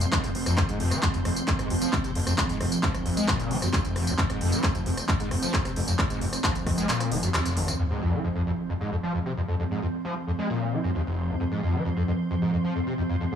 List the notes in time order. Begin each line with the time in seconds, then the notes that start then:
Already playing: F3 C4
0.01 F2, closed hi-hat, tambourine
0.12 D#3, kick, cross-stick, clap, closed hi-hat, tambourine
0.24 F2, closed hi-hat, tambourine
0.35 F1, open hi-hat
0.46 F2, cross-stick, closed hi-hat, tambourine
0.58 F2, kick, cross-stick, clap, closed hi-hat, tambourine
0.69 G#2, closed hi-hat, tambourine
0.80 F1 F2, open hi-hat
0.91 F3, cross-stick, closed hi-hat, tambourine
1.03 F2, kick, clap, closed hi-hat
1.14 F1 F2, closed hi-hat, tambourine
1.25 F1 F2, cross-stick, open hi-hat
1.36 closed hi-hat, tambourine
1.48 F2, kick, clap, closed hi-hat, tambourine
1.59 G#2, cross-stick, closed hi-hat, tambourine
1.70 F1 F2, open hi-hat
1.82 F3, closed hi-hat, tambourine
1.93 F2, kick, cross-stick, clap, closed hi-hat, tambourine
2.04 C3, closed hi-hat, tambourine
2.15 F1 F2, open hi-hat
2.27 F2, cross-stick, closed hi-hat, tambourine
2.38 F2, kick, clap, closed hi-hat, tambourine
2.49 G#2, closed hi-hat, tambourine
2.61 F1 F2, cross-stick, open hi-hat
2.72 closed hi-hat, tambourine
2.83 F3, kick, clap, closed hi-hat, tambourine
2.94 A#1, cross-stick, closed hi-hat, tambourine
3.06 A#1 F2, open hi-hat
3.17 G#3, closed hi-hat, tambourine
3.28 A#2, kick, cross-stick, clap, closed hi-hat, tambourine
3.40 closed hi-hat, tambourine
3.51 F1 F3, open hi-hat
3.62 F#2, cross-stick, closed hi-hat, tambourine
3.73 D#2, kick, clap, closed hi-hat, tambourine
3.85 F1, closed hi-hat, tambourine
3.96 F1, cross-stick, open hi-hat
4.07 F2, closed hi-hat, tambourine
4.18 F2, kick, clap, closed hi-hat
4.30 G#2, cross-stick, closed hi-hat, tambourine
4.41 F1 F2, open hi-hat
4.52 F3, closed hi-hat, tambourine
4.63 F2, kick, cross-stick, clap, closed hi-hat, tambourine
4.75 F1 F2, closed hi-hat, tambourine
4.86 F1 F2, open hi-hat
4.97 cross-stick, closed hi-hat, tambourine
5.09 F2, kick, clap, closed hi-hat, tambourine
5.20 G#2, closed hi-hat, tambourine
5.31 F1 F2, cross-stick, open hi-hat
5.42 F3, closed hi-hat, tambourine
5.54 F2, kick, clap, closed hi-hat, tambourine
5.65 C3, cross-stick, closed hi-hat, tambourine
5.76 F1 F2, open hi-hat
5.88 F2, closed hi-hat, tambourine
5.99 F2, kick, cross-stick, clap, closed hi-hat, tambourine
6.10 G#2, closed hi-hat, tambourine
6.21 F1 F2, open hi-hat
6.33 cross-stick, closed hi-hat, tambourine
6.44 F3, kick, clap, closed hi-hat, tambourine
6.55 A#1, closed hi-hat, tambourine
6.66 A#1 F2, kick, cross-stick, open hi-hat
6.78 G#3, closed hi-hat, tambourine
6.89 A#2, clap, closed hi-hat, tambourine
7.00 cross-stick, closed hi-hat, tambourine
7.12 F1 F3, open hi-hat
7.23 F#2, closed hi-hat, tambourine
7.34 D#2, cross-stick, clap, closed hi-hat, tambourine
7.45 F1, closed hi-hat, tambourine
7.57 G#1, open hi-hat
7.68 F2, cross-stick, closed hi-hat, tambourine
7.79 F2 F3 C4, sub drop
7.91 G#2
8.02 F2
8.13 F3
8.24 F2
8.36 F2
8.47 F2
8.69 F2
8.81 G#2
8.92 F2
9.03 F3
9.15 F2
9.26 C3
9.37 F2
9.48 F2
9.60 F2
9.71 G#2
9.82 F2
10.05 F3
10.27 F2
10.39 G#3
10.50 A#2
10.73 F3
10.84 F#2
10.95 D#2
11.06 F1
11.29 F2
11.40 F2
11.52 G#2
11.63 F2
11.74 F3
11.85 F2
11.97 F2
12.08 F2
12.30 F2
12.42 G#2
12.53 F2
12.64 F3
12.76 F2
12.87 C3
12.98 F2
13.09 F2
13.21 F2
13.32 G#2